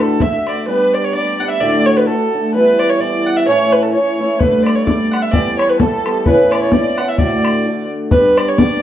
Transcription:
Already playing: steel-string acoustic guitar D2 A2 D3 A3 D4 F#4
0.01 fiddle A4
0.20 steel-string acoustic guitar D3 A3 D4 F#4, fiddle E5, bodhran
0.47 fiddle D5, bodhran
0.67 steel-string acoustic guitar G3 B3 D4 G4, fiddle B4
0.94 fiddle D5
1.04 fiddle C#5
1.14 steel-string acoustic guitar G3 B3 D4 G4, fiddle D5
1.39 steel-string acoustic guitar G3 B3 D4 G4, fiddle F#5
1.49 fiddle E5
1.60 steel-string acoustic guitar D2 A2 D3 A3 D4 F#4, fiddle D5
1.86 fiddle C#5
1.96 fiddle B4
2.07 steel-string acoustic guitar D3 A3 D4 F#4, fiddle A4
2.33 steel-string acoustic guitar D3 A3 D4 F#4
2.53 steel-string acoustic guitar E3 G3 B3 E4, fiddle B4
2.79 fiddle D5
2.90 fiddle C#5
3.00 steel-string acoustic guitar E3 G3 B3 E4, fiddle D5
3.26 fiddle F#5
3.37 fiddle E5
3.46 steel-string acoustic guitar A2 E3 A3 C#4 E4, fiddle C#5
3.72 fiddle B4
3.82 fiddle A4
3.93 steel-string acoustic guitar E3 A3 C#4 E4, fiddle C#5
4.19 steel-string acoustic guitar E3 A3 C#4 E4, fiddle C#5
4.39 steel-string acoustic guitar G3 A3 B3 D4, fiddle B4, bodhran
4.64 fiddle D5, bodhran
4.75 fiddle C#5
4.86 steel-string acoustic guitar G3 A3 B3 D4, fiddle D5, bodhran
5.11 fiddle F#5, bodhran
5.22 fiddle E5
5.32 steel-string acoustic guitar E3 G3 B3 G4, fiddle D5, bodhran
5.58 fiddle C#5, bodhran
5.69 fiddle B4
5.79 steel-string acoustic guitar E3 G3 B3 G4, fiddle A4, bodhran
6.05 steel-string acoustic guitar E3 G3 B3 G4, bodhran
6.25 steel-string acoustic guitar A2 E3 B3 C#4 E4, fiddle B4, bodhran
6.51 fiddle D5, bodhran
6.62 fiddle C#5
6.72 steel-string acoustic guitar E3 B3 C#4 E4, fiddle D5, bodhran
6.98 steel-string acoustic guitar E3 B3 C#4 E4, fiddle F#5, bodhran
7.08 fiddle E5
7.18 steel-string acoustic guitar D2 A2 D3 A3 D4 F#4, fiddle D5, bodhran
7.45 bodhran
7.65 steel-string acoustic guitar D3 A3 D4 F#4
8.11 steel-string acoustic guitar G3 B3 D4 G4, fiddle B4, bodhran
8.37 fiddle D5, bodhran
8.48 fiddle C#5
8.58 steel-string acoustic guitar G3 B3 D4 G4, fiddle D5, bodhran

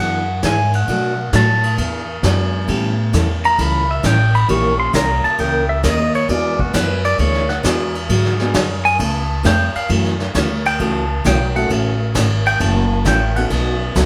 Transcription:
Already playing: upright bass F#2, steel-string acoustic guitar E3, upright piano B3 D4 E4 F#4 G#4
0.00 steel-string acoustic guitar B3 D4 G#4, pedal steel guitar F#5
0.43 upright bass G#2, steel-string acoustic guitar E3 B3 D4 G#4, pedal steel guitar G#5, kick, snare, hi-hat pedal, ride
0.73 pedal steel guitar F#5, ride
0.88 upright bass B2, steel-string acoustic guitar B2 F#3 A3 D4 F#4, kick, ride
1.33 upright bass A2, steel-string acoustic guitar B2 F#3 A3 D4 F#4, pedal steel guitar A5, kick, snare, hi-hat pedal, ride
1.63 ride
1.78 upright bass E2, steel-string acoustic guitar E3 B3 D4 G#4, kick, ride
2.22 upright bass F#2, steel-string acoustic guitar E3 B3 D4 G#4, upright piano G#3 B3 D4 E4 F#4, kick, snare, hi-hat pedal, ride
2.67 upright bass A2, steel-string acoustic guitar E3 G3 C#4 E4 A4, upright piano A3 B3 C#4 E4 G4, kick, ride
3.13 upright bass E2, steel-string acoustic guitar E3 G3 C#4 E4 A4, kick, snare, hi-hat pedal, ride
3.44 pedal steel guitar A#5, ride
3.58 upright bass C#2, steel-string acoustic guitar E3 G3 C#4 E4 A4, pedal steel guitar B5, kick, ride
3.91 pedal steel guitar E5
4.03 upright bass A1, steel-string acoustic guitar E3 G3 C#4 E4 A4, pedal steel guitar G5, kick, snare, hi-hat pedal, ride
4.34 pedal steel guitar B5, ride
4.48 upright bass A#1, steel-string acoustic guitar E3 A#3 C#4 G4 A#4, upright piano G3 A#3 C#4 E4 G4, pedal steel guitar C#6, kick, ride
4.80 pedal steel guitar C6
4.93 upright bass C2, steel-string acoustic guitar E3 A#3 C#4 G4 A#4, pedal steel guitar A#5, kick, snare, hi-hat pedal, ride
5.24 pedal steel guitar A5, muted upright bass stroke, ride
5.38 upright bass C#2, steel-string acoustic guitar E3 A#3 C#4 G4 A#4, pedal steel guitar G5, kick, ride
5.69 pedal steel guitar E5
5.83 upright bass D#2, steel-string acoustic guitar E3 A#3 C#4 G4 A#4, pedal steel guitar D#5, kick, snare, hi-hat pedal, ride
6.14 pedal steel guitar C#5, ride
6.29 upright bass E2, steel-string acoustic guitar E3 B3 D4 G#4, upright piano G#3 B3 D4 E4 F#4, pedal steel guitar D5, kick, ride
6.59 pedal steel guitar F#4, kick
6.73 upright bass F#2, steel-string acoustic guitar E3 B3 D4 G#4, pedal steel guitar B4, kick, snare, hi-hat pedal, ride
7.04 pedal steel guitar D5, ride
7.18 upright bass D2, steel-string acoustic guitar E3 B3 D4 G#4, pedal steel guitar C#5, kick, ride
7.34 snare
7.49 pedal steel guitar F#5, snare
7.63 upright bass E2, steel-string acoustic guitar E3 B3 D4 G#4, upright piano G#3 B3 D4 E4 F#4, kick, snare, hi-hat pedal, ride
7.95 ride
8.09 upright bass G#2, steel-string acoustic guitar D3 F#3 B3 F#4 G#4, kick, ride
8.25 snare
8.39 upright piano G#3 B3 D4 F#4 G#4, snare
8.54 upright bass F#2, steel-string acoustic guitar D3 F#3 B3 F#4 G#4, kick, snare, hi-hat pedal, ride
8.85 pedal steel guitar G#5, ride
8.99 upright bass C#2, steel-string acoustic guitar C#3 A3 B3 F4 B4, pedal steel guitar A5, kick, ride
9.43 upright bass F2, steel-string acoustic guitar C#3 A3 B3 F4 B4, pedal steel guitar G5, kick, snare, hi-hat pedal, ride
9.75 pedal steel guitar F5, muted upright bass stroke, ride
9.89 upright bass F#2, steel-string acoustic guitar C#3 E3 A3 C#4 F#4, kick, ride
10.05 snare
10.20 snare
10.34 upright bass D2, steel-string acoustic guitar C#3 E3 A3 C#4 F#4, kick, snare, hi-hat pedal, ride
10.65 pedal steel guitar G5, ride
10.79 upright bass C#2, steel-string acoustic guitar C#3 E3 A3 C#4 F#4, pedal steel guitar A5, kick, ride
11.24 upright bass B1, steel-string acoustic guitar C#3 E3 A3 C#4 F#4, pedal steel guitar G5, kick, snare, hi-hat pedal, ride
11.55 upright piano A3 C#4 E4 F#4 A4, pedal steel guitar F#5, ride
11.69 upright bass A1, steel-string acoustic guitar C#3 E3 A3 C#4 F#4, kick, ride
12.15 upright bass G#1, steel-string acoustic guitar C#3 E3 A3 C#4 F#4, kick, snare, hi-hat pedal, ride
12.46 pedal steel guitar G5, ride
12.60 upright bass F#1, steel-string acoustic guitar C#3 E3 A3 C#4 F#4, pedal steel guitar A5, kick, ride
13.05 upright bass A1, steel-string acoustic guitar C#3 E3 A3 C#4 F#4, pedal steel guitar G5, kick, snare, hi-hat pedal, ride
13.36 upright piano B3 C#4 D#4 F#4 A4, pedal steel guitar F#5, ride
13.50 upright bass B1, steel-string acoustic guitar B2 F#3 A3 D#4 F#4, kick, ride
13.95 upright bass C#2, steel-string acoustic guitar B2 F#3 A3 D#4 F#4, upright piano B3 C#4 D#4 F#4 A4, kick, snare, hi-hat pedal, ride

